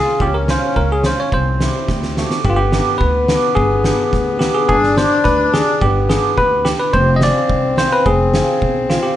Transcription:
Already playing: hammered dulcimer G#3, accordion F4, tine electric piano G#4
0.20 upright bass C#2, accordion C#4, tine electric piano G4, kick
0.34 tine electric piano A#4
0.48 hammered dulcimer G#3 C#4 F4, tine electric piano C5, snare
0.76 upright bass C#2, tine electric piano A#4, kick
0.92 tine electric piano G#4
1.04 hammered dulcimer G#3 C#4 F4, tine electric piano C5, snare
1.20 tine electric piano C#5
1.32 upright bass C2, accordion C4, tine electric piano C5, kick
1.60 hammered dulcimer G3 C4 E4, snare
1.88 upright bass D2, accordion C4, kick, snare
2.03 snare
2.17 hammered dulcimer A3 D4 F#4, snare
2.31 snare
2.45 upright bass G1, accordion B3, tine electric piano G4, kick
2.50 tine electric piano F4
2.56 tine electric piano G4
2.72 hammered dulcimer B3 D4 G4, snare
2.98 upright bass D2, tine electric piano B4, kick
3.28 hammered dulcimer B3 D4 G4, snare
3.55 upright bass G1, tine electric piano G#4, kick
3.84 hammered dulcimer B3 D4 G4, snare
4.13 upright bass D2, kick, snare
4.39 hammered dulcimer B3 D4 G4, tine electric piano G4, snare
4.54 tine electric piano G#4
4.69 upright bass G1, accordion D4, tine electric piano G#4, kick
4.83 snare
4.97 hammered dulcimer B3 D4 G4, tine electric piano C5, snare
5.24 upright bass D2, tine electric piano B4, kick, snare
5.53 hammered dulcimer B3 D4 G4, tine electric piano G#4, snare
5.81 upright bass G1, accordion B3, tine electric piano G4, kick
6.09 hammered dulcimer B3 D4 G4, tine electric piano G#4, snare
6.38 upright bass D2, tine electric piano B4, kick
6.65 hammered dulcimer B3 D4 G4, tine electric piano G4, snare
6.80 tine electric piano B4
6.93 upright bass F1, accordion C4, tine electric piano C5, kick
7.16 tine electric piano D#5
7.21 hammered dulcimer C4 F4 G#4, tine electric piano D5, snare
7.49 upright bass C2, kick
7.77 hammered dulcimer C4 F4 G#4, tine electric piano C5, snare
7.93 tine electric piano B4
8.06 upright bass F1, tine electric piano G#4, kick
8.34 hammered dulcimer C4 F4 G#4, snare
8.62 upright bass B1, kick
8.90 hammered dulcimer C4 F4 G#4, tine electric piano F4, snare
9.03 tine electric piano G4

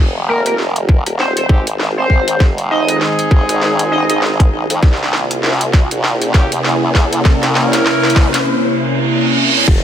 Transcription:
Already playing: wobble bass F1, analog synth pad D#3 G#3 F4 G5, riser
0.28 analog synth lead A#4, cross-stick
0.46 analog synth lead A#4, closed hi-hat
0.58 wobble bass F1, snare
0.76 closed hi-hat
0.89 kick
1.06 wobble bass D#1, cross-stick, closed hi-hat
1.19 analog synth lead C5, snare
1.37 analog synth lead C5, closed hi-hat
1.49 wobble bass G#1, horn section G#3 C4 D#4 G4, kick
1.67 closed hi-hat
1.80 cross-stick, snare
1.97 analog synth lead C5
2.10 kick
2.28 closed hi-hat
2.40 wobble bass F1, analog synth pad D#4, kick, snare
2.58 closed hi-hat
2.71 horn section G#3 C4 D#4 G#4, analog synth lead D#5, cross-stick
2.77 cross-stick
2.81 cross-stick
2.88 cross-stick, closed hi-hat
2.91 cross-stick
2.97 cross-stick
3.01 snare
3.19 closed hi-hat
3.31 wobble bass F1, kick
3.49 wobble bass G#1, cross-stick, closed hi-hat
3.61 snare
3.79 closed hi-hat
3.92 wobble bass F1, analog synth lead D#5
4.09 wobble bass G#1, analog synth lead D#5, closed hi-hat
4.22 snare
4.40 kick, closed hi-hat
4.52 wobble bass A#1
4.70 wobble bass F2, closed hi-hat
4.82 wobble bass C2, analog synth pad C3 A#3 C#4 E4, kick, snare
4.93 snare
5.03 snare
5.13 snare
5.31 closed hi-hat
5.43 wobble bass C2, snare
5.46 snare
5.49 snare
5.52 snare
5.58 snare, closed hi-hat
5.73 kick, snare
5.91 wobble bass A#1, closed hi-hat
6.04 snare
6.22 closed hi-hat
6.34 wobble bass E2, horn section A#3 C#4 E4 G4, kick, snare
6.52 closed hi-hat
6.64 snare
6.95 kick, snare
7.13 closed hi-hat
7.25 wobble bass C2, kick, snare
7.43 snare, closed hi-hat
7.55 horn section A#3 C#4 E4 A#4, snare
7.73 snare, closed hi-hat
7.86 snare
8.04 snare
8.10 closed hi-hat
8.16 wobble bass C2, kick, snare
8.34 snare, closed hi-hat
8.46 reverse cymbal
9.67 wobble bass F1, analog synth pad D#3 G#3 F4 G5, kick, crash, impact

